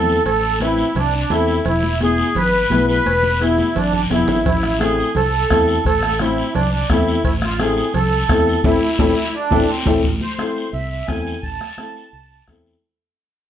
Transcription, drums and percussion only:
0.09 short guiro
0.26 cowbell, long guiro
0.60 cowbell, high conga, short guiro
0.78 short guiro
0.95 cowbell, low conga, long guiro
1.30 cowbell, high conga, low timbale, short guiro
1.47 short guiro
1.65 cowbell, low conga, long guiro
1.83 high conga
2.00 cowbell, high conga, short guiro
2.18 short guiro
2.35 cowbell, low conga, long guiro
2.70 cowbell, high conga, low conga, short guiro
2.88 short guiro
3.06 cowbell, high conga, long guiro
3.23 high conga
3.42 cowbell, short guiro
3.58 high conga, short guiro
3.76 cowbell, low conga, long guiro
3.93 low conga
4.10 cowbell, low conga, low timbale, short guiro
4.28 low conga, short guiro
4.45 bombo low, cowbell, low conga, long guiro
4.63 bombo rim, high conga
4.81 bombo rim, cowbell, high conga, short guiro
4.99 short guiro
5.15 cowbell, low conga, long guiro
5.50 bombo low, bombo rim, cowbell, high conga, low timbale, short guiro
5.68 short guiro
5.85 bombo low, cowbell, long guiro
6.03 bombo rim, high conga
6.19 bombo rim, cowbell, high conga, short guiro
6.38 short guiro
6.55 cowbell, low conga, long guiro
6.90 bombo low, bombo rim, cowbell, high conga, short guiro
7.08 short guiro
7.24 bombo low, cowbell, long guiro
7.42 bombo rim, high conga
7.59 bombo rim, cowbell, high conga, short guiro
7.77 short guiro
7.94 cowbell, low conga, long guiro
8.29 bombo low, bombo rim, cowbell, high conga, low timbale, short guiro
8.48 short guiro
8.64 bombo low, high conga, high timbale, long guiro
8.99 bombo low, high conga, high timbale, long guiro
9.51 bombo low, high conga, high timbale, long guiro
9.86 bombo low, high conga, high timbale, long guiro
10.04 bombo low, long guiro
10.20 high conga
10.39 bombo rim, high conga, short guiro
10.56 short guiro
10.74 long guiro
11.08 bombo low, bombo rim, high conga, short guiro
11.27 short guiro
11.43 bombo low, long guiro
11.61 bombo rim, high conga
11.78 bombo rim, high conga, short guiro
11.96 short guiro
12.14 long guiro
12.47 bombo low, bombo rim, high conga, short guiro
12.66 short guiro

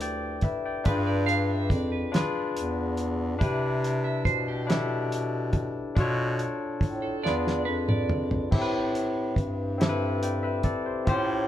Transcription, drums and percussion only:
0.01 closed hi-hat
0.41 kick, closed hi-hat
0.85 kick, closed hi-hat
1.29 closed hi-hat
1.70 kick, closed hi-hat
2.14 snare, closed hi-hat
2.57 closed hi-hat
2.97 closed hi-hat
3.41 kick, closed hi-hat
3.84 closed hi-hat
4.25 kick, closed hi-hat
4.70 snare, closed hi-hat
5.12 closed hi-hat
5.53 kick, closed hi-hat
5.97 kick, closed hi-hat
6.39 closed hi-hat
6.81 kick, closed hi-hat
7.26 snare
7.47 snare
7.89 mid tom
8.10 mid tom
8.31 floor tom
8.52 kick, crash
8.95 closed hi-hat
9.36 kick, closed hi-hat
9.81 snare, closed hi-hat
10.23 closed hi-hat
10.63 kick, closed hi-hat
11.07 kick, closed hi-hat

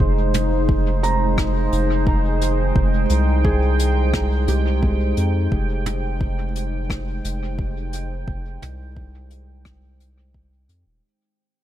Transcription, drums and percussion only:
0.00 kick
0.34 closed hi-hat, mid tom
0.69 kick
1.04 closed hi-hat
1.38 kick, cross-stick
1.73 closed hi-hat
2.07 kick
2.41 closed hi-hat
2.76 kick
3.10 closed hi-hat
3.45 kick
3.79 closed hi-hat
4.14 kick, cross-stick
4.48 closed hi-hat
4.83 kick
5.17 closed hi-hat
5.52 kick
5.86 closed hi-hat, mid tom
6.21 kick
6.56 closed hi-hat
6.90 kick, cross-stick
7.25 closed hi-hat
7.59 kick
7.93 closed hi-hat
8.28 kick
8.62 closed hi-hat, mid tom
8.96 kick
9.31 closed hi-hat
9.65 kick, cross-stick
10.00 closed hi-hat
10.34 kick
10.69 closed hi-hat

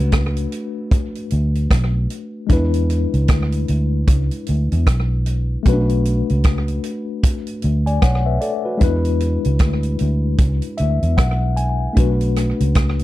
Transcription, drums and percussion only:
0.12 kick, cross-stick, closed hi-hat
0.37 closed hi-hat
0.52 closed hi-hat
0.91 kick, closed hi-hat
1.15 closed hi-hat
1.30 closed hi-hat
1.55 closed hi-hat
1.71 kick, cross-stick, closed hi-hat
2.10 closed hi-hat
2.49 kick, closed hi-hat
2.74 closed hi-hat
2.90 closed hi-hat
3.14 closed hi-hat
3.28 kick, cross-stick, closed hi-hat
3.52 closed hi-hat
3.68 closed hi-hat
4.07 kick, closed hi-hat
4.31 closed hi-hat
4.46 closed hi-hat
4.72 closed hi-hat
4.87 kick, cross-stick, closed hi-hat
5.26 closed hi-hat
5.65 kick, closed hi-hat
5.89 closed hi-hat
6.05 closed hi-hat
6.29 closed hi-hat
6.44 kick, cross-stick, closed hi-hat
6.68 closed hi-hat
6.84 closed hi-hat
7.23 kick, closed hi-hat
7.47 closed hi-hat
7.62 closed hi-hat
7.87 closed hi-hat
8.02 kick, cross-stick, closed hi-hat
8.41 closed hi-hat
8.81 kick, closed hi-hat
9.05 closed hi-hat
9.20 closed hi-hat
9.44 closed hi-hat
9.59 kick, cross-stick, closed hi-hat
9.83 closed hi-hat
9.99 closed hi-hat
10.38 kick, closed hi-hat
10.62 closed hi-hat
10.78 closed hi-hat
11.03 closed hi-hat
11.18 kick, cross-stick, closed hi-hat
11.57 closed hi-hat
11.97 kick, closed hi-hat
12.21 closed hi-hat
12.36 cross-stick, closed hi-hat
12.60 closed hi-hat
12.75 kick, cross-stick, closed hi-hat
12.99 closed hi-hat

